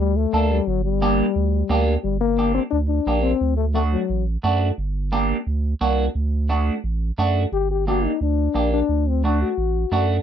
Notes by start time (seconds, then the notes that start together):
0.00 D2 G3
0.16 A3
0.33 D2 A#3 D4 A4
0.51 G3
0.67 G1 F#3
0.85 G3
1.02 A#3 D4 G4
1.36 D2
1.69 D2 A#3 D4 G4
2.03 G1 G3
2.20 A#3
2.38 A#3 D4 G4
2.54 C4
2.70 D2 D4
2.88 D4
3.07 A#1 A#3 D4 G4
3.22 C4
3.41 D2
3.57 A3
3.74 A3 D4 F#4
3.92 F#3
4.10 A1
4.43 F#2 A3 D4 F#4
4.78 G1
5.12 A#3 D4 G4
5.47 D2
5.81 C2 A#3 D4 F#4
6.15 D2
6.49 A3 D4 F#4
6.84 A1
7.18 F#2 A3 D4 F#4
7.52 G1 G4
7.71 G4
7.87 A#3 D4 F#4 G4
8.05 D#4
8.21 D2 D4
8.54 A#1 A#3 D4 G4
8.73 D4
8.89 D2
9.09 C4
9.24 A3 D4 F#4
9.42 F#4
9.58 A1
9.92 F#2 A3 D4 F#4